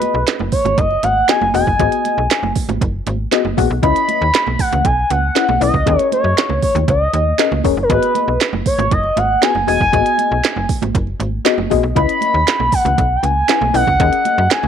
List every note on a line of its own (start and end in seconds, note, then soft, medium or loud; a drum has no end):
0.00 0.18 B3 medium
0.00 0.18 F#4 medium
0.00 0.18 G#4 medium
0.00 0.24 B4 loud
0.00 0.18 D#5 medium
0.00 closed hi-hat medium
0.00 high conga medium
0.14 0.24 B1 medium
0.27 snare loud
0.27 clap medium
0.27 closed hi-hat loud
0.27 muted conga soft
0.39 0.50 F#1 medium
0.39 high conga medium
0.52 0.79 C#5 medium
0.52 kick loud
0.52 open hi-hat medium
0.65 0.75 G#1 medium
0.65 closed hi-hat soft
0.65 high conga medium
0.65 low conga medium
0.78 0.98 F#1 loud
0.78 1.05 D#5 loud
0.78 kick loud
0.78 closed hi-hat medium
0.91 muted conga soft
1.03 1.23 G#1 medium
1.03 1.30 F#5 loud
1.03 closed hi-hat medium
1.03 high conga medium
1.28 1.39 B3 medium
1.28 1.39 F#4 medium
1.28 1.39 G#4 medium
1.28 1.39 D#5 medium
1.28 1.54 G#5 loud
1.28 snare loud
1.28 clap medium
1.28 closed hi-hat medium
1.28 muted conga soft
1.41 1.51 F#1 medium
1.41 muted conga soft
1.41 high conga medium
1.54 1.64 E1 loud
1.54 1.64 B3 medium
1.54 1.64 F#4 medium
1.54 1.65 G#4 medium
1.54 1.65 D#5 medium
1.54 2.52 G#5 medium
1.54 open hi-hat medium
1.54 low conga medium
1.67 1.77 F#1 medium
1.67 kick medium
1.79 1.89 G#1 loud
1.79 2.21 B3 medium
1.79 2.21 F#4 medium
1.79 2.22 G#4 medium
1.79 2.22 D#5 medium
1.79 kick loud
1.79 closed hi-hat medium
1.92 closed hi-hat soft
2.05 closed hi-hat medium
2.05 high conga medium
2.18 2.28 B1 medium
2.31 snare loud
2.31 clap medium
2.31 closed hi-hat loud
2.31 muted conga soft
2.43 2.53 F#1 medium
2.43 muted conga soft
2.43 high conga medium
2.55 kick medium
2.55 open hi-hat medium
2.69 2.79 G#1 medium
2.69 closed hi-hat soft
2.69 high conga medium
2.69 low conga medium
2.81 3.01 F#1 loud
2.81 kick loud
2.81 closed hi-hat medium
2.81 muted conga soft
3.06 3.27 G#1 loud
3.06 closed hi-hat medium
3.06 high conga medium
3.31 3.42 B3 medium
3.31 3.42 F#4 medium
3.31 3.43 G#4 medium
3.31 3.43 D#5 medium
3.31 snare loud
3.31 clap medium
3.31 closed hi-hat medium
3.31 muted conga soft
3.45 3.55 F#1 medium
3.45 high conga loud
3.57 3.68 A#1 loud
3.57 3.68 B3 medium
3.57 3.68 F#4 medium
3.57 3.68 G#4 medium
3.57 3.68 F#5 loud
3.57 kick medium
3.57 open hi-hat medium
3.57 low conga medium
3.70 3.80 B1 medium
3.82 3.93 C#2 loud
3.82 4.25 C#4 medium
3.82 4.25 E4 medium
3.82 4.25 B4 medium
3.82 4.25 D#5 medium
3.82 4.61 B5 loud
3.82 kick loud
3.82 closed hi-hat medium
3.82 muted conga soft
3.96 closed hi-hat medium
3.96 muted conga soft
4.08 closed hi-hat medium
4.08 high conga medium
4.22 4.31 D#2 medium
4.34 snare loud
4.34 clap medium
4.34 closed hi-hat loud
4.47 4.57 B1 medium
4.47 muted conga soft
4.47 high conga medium
4.59 4.87 F#5 loud
4.59 kick medium
4.59 open hi-hat medium
4.72 4.82 C#2 medium
4.72 closed hi-hat soft
4.72 high conga medium
4.72 low conga medium
4.85 5.05 B1 medium
4.85 5.12 G#5 medium
4.85 kick loud
4.85 closed hi-hat medium
4.85 muted conga soft
5.10 5.30 C#2 medium
5.10 5.61 F#5 loud
5.10 closed hi-hat medium
5.10 high conga medium
5.35 5.46 C#4 medium
5.35 5.46 E4 medium
5.35 5.46 B4 medium
5.35 5.46 F#5 medium
5.35 snare loud
5.35 clap medium
5.35 closed hi-hat medium
5.48 5.58 B1 medium
5.48 muted conga soft
5.48 high conga medium
5.60 5.71 B1 loud
5.60 5.71 C#4 medium
5.60 5.71 E4 medium
5.60 5.71 B4 medium
5.60 6.08 D#5 medium
5.60 5.71 F#5 medium
5.60 open hi-hat medium
5.60 low conga medium
5.74 5.84 C#2 medium
5.74 kick medium
5.86 5.96 D#2 loud
5.86 6.28 C#4 medium
5.86 6.28 G#4 medium
5.86 6.28 A#4 medium
5.86 6.28 D#5 medium
5.86 kick loud
5.86 closed hi-hat medium
5.86 muted conga soft
5.99 closed hi-hat medium
5.99 muted conga soft
6.12 6.60 C#5 medium
6.12 closed hi-hat medium
6.12 high conga medium
6.24 6.34 F#2 medium
6.37 snare loud
6.37 clap medium
6.37 closed hi-hat loud
6.37 muted conga soft
6.49 6.60 C#2 medium
6.49 muted conga soft
6.49 high conga medium
6.62 6.75 C#5 medium
6.62 kick loud
6.62 open hi-hat medium
6.75 6.85 D#2 loud
6.75 closed hi-hat medium
6.75 high conga medium
6.75 low conga medium
6.88 7.08 C#2 loud
6.88 7.61 D#5 medium
6.88 kick loud
6.88 closed hi-hat medium
6.88 muted conga soft
7.13 7.33 D#2 medium
7.13 closed hi-hat medium
7.13 high conga medium
7.38 7.49 C#4 medium
7.38 7.49 G#4 medium
7.38 7.49 A#4 medium
7.38 7.49 D#5 medium
7.38 snare loud
7.38 clap loud
7.38 closed hi-hat medium
7.38 muted conga soft
7.52 7.62 C#2 medium
7.52 high conga medium
7.64 7.74 E1 medium
7.64 7.75 C#4 medium
7.64 7.75 G#4 medium
7.64 7.75 A#4 medium
7.64 7.75 C#5 loud
7.64 kick medium
7.64 open hi-hat medium
7.64 low conga medium
7.77 7.87 F#1 medium
7.83 7.91 A#4 medium
7.89 8.00 G#1 loud
7.89 8.32 B3 medium
7.89 8.32 F#4 medium
7.89 8.32 G#4 medium
7.89 8.41 B4 loud
7.89 8.32 D#5 medium
7.89 kick loud
7.89 closed hi-hat medium
7.89 muted conga soft
8.02 closed hi-hat medium
8.02 muted conga soft
8.15 closed hi-hat medium
8.15 high conga medium
8.28 8.38 B1 medium
8.41 snare loud
8.41 clap medium
8.41 closed hi-hat medium
8.53 8.63 F#1 medium
8.53 high conga medium
8.66 8.94 C#5 medium
8.66 kick medium
8.66 open hi-hat medium
8.79 8.89 G#1 loud
8.79 closed hi-hat soft
8.79 high conga medium
8.79 low conga medium
8.91 9.11 F#1 medium
8.91 9.19 D#5 medium
8.91 kick loud
8.91 closed hi-hat medium
8.91 muted conga soft
9.04 muted conga soft
9.16 9.37 G#1 loud
9.16 9.44 F#5 loud
9.16 closed hi-hat medium
9.16 high conga medium
9.41 9.52 B3 medium
9.41 9.52 F#4 medium
9.41 9.53 G#4 medium
9.41 9.53 B4 medium
9.41 9.67 G#5 loud
9.41 snare loud
9.41 clap medium
9.41 closed hi-hat medium
9.55 9.65 F#1 medium
9.55 high conga medium
9.67 9.78 E1 loud
9.67 9.78 B3 medium
9.67 9.78 F#4 medium
9.67 9.78 G#4 medium
9.67 9.78 D#5 medium
9.67 10.65 G#5 loud
9.67 open hi-hat medium
9.67 low conga medium
9.80 9.90 F#1 medium
9.80 kick medium
9.92 10.03 G#1 loud
9.92 9.99 A#3 medium
9.92 10.35 F#4 medium
9.92 10.35 G#4 medium
9.92 10.35 D#5 medium
9.92 kick loud
9.92 closed hi-hat medium
9.99 10.38 B3 medium
10.06 closed hi-hat soft
10.18 closed hi-hat medium
10.18 high conga medium
10.31 10.41 B1 medium
10.44 snare loud
10.44 clap medium
10.44 closed hi-hat medium
10.56 10.67 F#1 medium
10.56 high conga medium
10.69 kick loud
10.69 open hi-hat medium
10.82 10.92 G#1 medium
10.82 closed hi-hat soft
10.82 high conga medium
10.82 low conga medium
10.95 11.15 F#1 loud
10.95 kick loud
10.95 closed hi-hat medium
10.95 muted conga soft
11.07 muted conga soft
11.20 11.40 G#1 loud
11.20 closed hi-hat medium
11.20 high conga medium
11.45 11.56 B3 medium
11.45 11.56 F#4 medium
11.45 11.56 G#4 medium
11.45 11.56 D#5 medium
11.45 snare loud
11.45 clap loud
11.45 closed hi-hat medium
11.45 muted conga soft
11.58 11.68 F#1 medium
11.58 muted conga soft
11.58 high conga medium
11.70 11.81 A#1 medium
11.70 11.81 B3 medium
11.70 11.81 F#4 medium
11.70 11.81 G#4 medium
11.70 11.82 D#5 loud
11.70 kick medium
11.70 open hi-hat medium
11.70 low conga medium
11.83 11.93 B1 medium
11.95 12.06 C#2 loud
11.95 12.38 C#4 medium
11.95 12.38 E4 medium
11.95 12.38 B4 medium
11.95 12.38 D#5 medium
11.95 12.75 B5 loud
11.95 kick loud
11.95 closed hi-hat medium
11.95 muted conga soft
12.09 closed hi-hat medium
12.21 closed hi-hat medium
12.21 high conga medium
12.34 12.44 D#2 medium
12.47 snare loud
12.47 clap medium
12.47 closed hi-hat loud
12.47 muted conga soft
12.60 12.70 B1 medium
12.60 high conga medium
12.72 13.18 F#5 loud
12.72 kick loud
12.72 open hi-hat medium
12.85 12.95 C#2 medium
12.85 closed hi-hat medium
12.85 high conga medium
12.85 low conga medium
12.98 13.18 B1 loud
12.98 kick loud
12.98 closed hi-hat medium
12.98 muted conga soft
13.16 13.26 G5 medium
13.23 13.43 C#2 medium
13.23 13.74 G#5 loud
13.23 closed hi-hat medium
13.23 high conga medium
13.48 13.59 C#4 medium
13.48 13.59 E4 medium
13.48 13.59 B4 medium
13.48 13.59 F#5 medium
13.48 snare loud
13.48 clap medium
13.48 closed hi-hat medium
13.48 muted conga soft
13.61 13.71 B1 medium
13.61 muted conga soft
13.61 high conga loud
13.73 13.84 B1 loud
13.73 13.84 C#4 medium
13.73 13.84 E4 medium
13.73 13.85 B4 medium
13.73 13.85 D#5 medium
13.73 14.52 F#5 loud
13.73 open hi-hat medium
13.73 low conga medium
13.87 13.97 C#2 medium
13.87 kick medium
13.99 14.10 D#2 loud
13.99 14.42 C#4 medium
13.99 14.42 G#4 medium
13.99 14.42 A#4 medium
13.99 14.42 D#5 medium
13.99 kick loud
13.99 closed hi-hat medium
13.99 muted conga soft
14.12 closed hi-hat medium
14.12 muted conga soft
14.25 closed hi-hat medium
14.25 high conga medium
14.38 14.48 F#2 loud
14.50 14.68 G#5 medium
14.50 snare loud
14.50 clap medium
14.50 closed hi-hat loud
14.50 muted conga soft
14.63 14.68 C#2 medium
14.63 muted conga soft
14.63 high conga medium